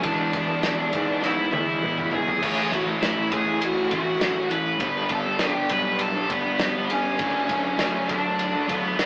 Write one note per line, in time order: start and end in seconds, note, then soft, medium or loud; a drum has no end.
0.03 0.31 E2 loud
0.03 2.41 E2 medium
0.03 2.42 B2 medium
0.03 0.31 E3 medium
0.03 0.32 G#3 loud
0.03 0.33 B3 loud
0.03 1.18 D4 medium
0.03 0.35 E4 loud
0.03 1.26 D5 medium
0.03 kick loud
0.03 ride loud
0.07 2.42 E3 loud
0.32 0.89 E2 medium
0.32 0.61 E3 medium
0.32 0.49 G#3 medium
0.32 0.48 B3 medium
0.32 0.47 E4 medium
0.32 kick medium
0.32 ride medium
0.47 0.60 G#3 medium
0.47 0.62 B3 medium
0.47 0.63 E4 medium
0.61 0.91 E3 medium
0.61 0.91 G#3 loud
0.61 0.92 B3 loud
0.61 0.94 E4 loud
0.61 snare loud
0.61 ride loud
0.77 0.92 G#3 medium
0.77 0.92 B3 medium
0.77 0.94 E4 medium
0.91 1.49 G#2 loud
0.91 1.37 E3 medium
0.91 1.07 G#3 medium
0.91 1.06 B3 medium
0.91 1.04 E4 medium
0.91 kick medium
0.91 ride medium
1.05 1.38 G#3 medium
1.05 1.37 B3 medium
1.05 1.35 E4 medium
1.23 1.52 E4 medium
1.23 1.51 E5 loud
1.23 snare medium
1.36 1.50 G#3 medium
1.36 1.51 B3 medium
1.36 1.52 E4 medium
1.50 2.08 E2 medium
1.50 1.81 E3 medium
1.50 1.69 G#3 medium
1.50 1.67 B3 medium
1.50 1.66 E4 medium
1.50 2.09 E4 medium
1.50 2.14 E5 loud
1.50 high tom medium
1.67 1.82 G#3 medium
1.67 1.83 B3 medium
1.67 1.84 E4 medium
1.82 2.10 E3 loud
1.82 1.98 G#3 loud
1.82 1.96 B3 loud
1.82 1.95 E4 loud
1.82 mid tom loud
1.96 2.11 G#3 medium
1.96 2.12 B3 medium
1.96 2.12 E4 medium
1.96 mid tom medium
2.11 2.40 B1 loud
2.11 2.40 E3 medium
2.11 2.40 G#3 medium
2.11 2.41 B3 medium
2.11 2.41 E4 medium
2.11 2.69 G#4 medium
2.11 2.74 G#5 loud
2.11 floor tom loud
2.26 2.41 G#3 medium
2.26 2.41 B3 medium
2.26 2.40 E4 medium
2.26 floor tom medium
2.40 2.70 A1 loud
2.40 2.99 A2 loud
2.40 4.79 A2 medium
2.40 2.70 E3 loud
2.40 2.71 A3 loud
2.40 2.72 C#4 loud
2.40 2.73 E4 medium
2.40 kick loud
2.40 crash loud
2.40 ride loud
2.44 4.80 E3 medium
2.44 4.81 A3 medium
2.71 3.28 A1 loud
2.71 3.00 E3 medium
2.71 2.87 A3 medium
2.71 2.86 C#4 medium
2.71 2.85 E4 medium
2.71 2.81 F#4 medium
2.71 2.82 F#5 medium
2.71 kick loud
2.71 ride medium
2.86 3.01 A3 medium
2.86 3.01 C#4 medium
2.86 3.02 E4 medium
3.00 3.61 A2 medium
3.00 3.29 E3 loud
3.00 3.30 A3 medium
3.00 3.31 C#4 loud
3.00 3.29 E4 medium
3.00 3.32 E4 medium
3.00 3.32 E5 medium
3.00 snare loud
3.00 ride loud
3.16 3.31 A3 medium
3.16 3.31 C#4 medium
3.16 3.32 E4 medium
3.30 3.87 C#2 medium
3.30 3.76 E3 medium
3.30 3.48 A3 medium
3.30 3.46 C#4 medium
3.30 3.44 E4 medium
3.30 3.59 G#4 medium
3.30 3.62 G#5 medium
3.30 kick medium
3.30 ride medium
3.46 3.76 A3 medium
3.46 3.75 C#4 medium
3.46 3.73 E4 medium
3.61 3.91 F#4 medium
3.61 3.91 F#5 medium
3.61 ride loud
3.75 3.90 A3 medium
3.75 3.91 C#4 medium
3.75 3.91 E4 medium
3.90 4.77 A1 medium
3.90 4.18 E3 medium
3.90 4.07 A3 medium
3.90 4.05 C#4 medium
3.90 4.03 E4 medium
3.90 4.47 F#4 medium
3.90 4.53 F#5 medium
3.90 kick medium
3.90 ride medium
4.05 4.19 A3 medium
4.05 4.20 C#4 medium
4.05 4.20 E4 medium
4.18 4.64 A2 loud
4.18 4.48 E3 loud
4.18 4.35 A3 medium
4.18 4.34 C#4 loud
4.18 4.33 E4 loud
4.18 snare loud
4.18 ride loud
4.34 4.49 A3 medium
4.34 4.50 C#4 medium
4.34 4.51 E4 medium
4.49 4.77 E3 medium
4.49 4.79 A3 medium
4.49 4.79 C#4 medium
4.49 4.79 E4 medium
4.49 5.07 B4 medium
4.49 5.12 B5 loud
4.49 ride medium
4.65 4.80 A3 medium
4.65 4.79 C#4 medium
4.65 4.78 E4 medium
4.78 5.08 G1 loud
4.78 7.18 G2 loud
4.78 5.08 G3 loud
4.78 5.09 B3 medium
4.78 5.11 D4 medium
4.78 5.11 G4 medium
4.78 kick loud
4.78 ride loud
4.82 7.17 D3 loud
4.82 7.19 G3 loud
5.09 5.66 G1 medium
5.09 5.38 G3 medium
5.09 5.26 B3 medium
5.09 5.27 D4 medium
5.09 5.24 G4 medium
5.09 5.39 A4 medium
5.09 5.42 A5 medium
5.09 kick loud
5.09 ride medium
5.25 5.38 B3 medium
5.25 5.40 D4 medium
5.25 5.40 G4 medium
5.39 5.68 G3 medium
5.39 5.70 B3 loud
5.39 5.71 D4 loud
5.39 5.68 G4 medium
5.39 5.71 G4 loud
5.39 5.72 G5 loud
5.39 snare loud
5.39 ride loud
5.54 5.69 B3 medium
5.54 5.70 D4 medium
5.54 5.71 G4 medium
5.69 6.26 B1 medium
5.69 6.15 G3 medium
5.69 5.84 B3 medium
5.69 5.84 D4 medium
5.69 5.82 G4 medium
5.69 5.99 B4 medium
5.69 6.01 B5 loud
5.69 kick medium
5.69 ride medium
5.83 6.15 B3 medium
5.83 6.14 D4 medium
5.83 6.12 G4 medium
5.99 6.29 A4 medium
5.99 6.29 A5 medium
5.99 ride loud
6.13 6.29 B3 medium
6.13 6.29 D4 medium
6.13 6.30 G4 medium
6.28 6.86 G1 medium
6.28 6.58 G3 medium
6.28 6.45 B3 medium
6.28 6.86 B3 medium
6.28 6.43 D4 medium
6.28 6.41 G4 medium
6.28 6.91 B4 medium
6.28 kick medium
6.28 ride medium
6.43 6.59 B3 medium
6.43 6.60 D4 medium
6.43 6.61 G4 medium
6.59 6.89 G3 medium
6.59 6.76 B3 loud
6.59 6.74 D4 loud
6.59 6.73 G4 loud
6.59 snare loud
6.59 ride loud
6.74 6.89 B3 medium
6.74 6.90 D4 medium
6.74 6.91 G4 medium
6.90 7.18 G1 loud
6.90 7.18 G3 medium
6.90 7.18 B3 medium
6.90 8.05 C#4 medium
6.90 7.19 D4 medium
6.90 7.19 G4 medium
6.90 8.11 C#5 loud
6.90 ride medium
7.05 7.19 B3 medium
7.05 7.18 D4 medium
7.05 7.18 G4 medium
7.18 7.48 F#1 loud
7.18 9.06 D3 medium
7.18 7.48 F#3 medium
7.18 9.06 A3 medium
7.18 7.49 A3 loud
7.18 9.06 D4 loud
7.18 7.50 D4 loud
7.18 7.51 A4 loud
7.18 kick loud
7.18 ride loud
7.49 8.06 F#1 loud
7.49 7.76 F#3 medium
7.49 7.66 A3 medium
7.49 7.65 D4 medium
7.49 7.63 A4 medium
7.49 kick medium
7.49 ride medium
7.64 7.77 A3 medium
7.64 7.78 D4 medium
7.64 7.79 A4 medium
7.77 8.08 F#3 medium
7.77 8.09 A3 loud
7.77 8.10 D4 loud
7.77 8.11 A4 loud
7.77 snare loud
7.77 ride loud
7.94 8.08 A3 medium
7.94 8.08 D4 medium
7.94 8.09 A4 medium
8.09 8.65 F#1 loud
8.09 8.54 F#3 medium
8.09 8.26 A3 medium
8.09 8.65 D4 medium
8.09 8.24 D4 medium
8.09 8.23 A4 medium
8.09 8.72 D5 loud
8.09 kick medium
8.09 ride medium
8.24 8.54 A3 medium
8.24 8.53 D4 medium
8.24 8.52 A4 medium
8.39 ride loud
8.54 8.67 A3 medium
8.54 8.68 D4 medium
8.54 8.69 A4 medium
8.67 9.06 F#1 medium
8.67 8.96 F#3 medium
8.67 8.84 A3 medium
8.67 9.06 B3 medium
8.67 8.83 D4 medium
8.67 8.82 A4 medium
8.67 kick medium
8.67 ride medium
8.73 9.06 B4 loud
8.83 8.97 A3 medium
8.83 8.97 D4 medium
8.83 8.98 A4 medium
8.97 9.06 F#3 loud
8.97 9.06 A3 loud
8.97 9.06 D4 medium
8.97 9.06 A4 loud
8.97 snare loud
8.97 ride loud